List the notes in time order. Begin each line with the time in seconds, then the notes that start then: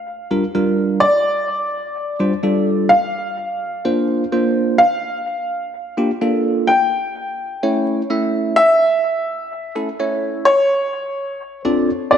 Already playing: F5
0.31 G3 D4 F4 A#4
0.55 G3 D4 F4 A#4
1.00 D5
2.20 G3 D4 F4 C5
2.43 G3 D4 F4 A4
2.89 F5
3.85 A#3 D4 F4 C5
4.32 A#3 D4 F4 C5
4.78 F5
5.97 A#3 D4 F4 G4
6.21 A#3 D4 F4 A4
6.67 G5
7.63 A3 C#4 E4 C#5
8.10 A3 C#4 E4 E5
8.56 E5
9.75 A3 C#4 E4 A4
9.99 A3 C#4 E4 C#5
10.45 C#5
11.65 C4 D4 F4 A4 D5
12.11 C4 D4 F4 A4 D5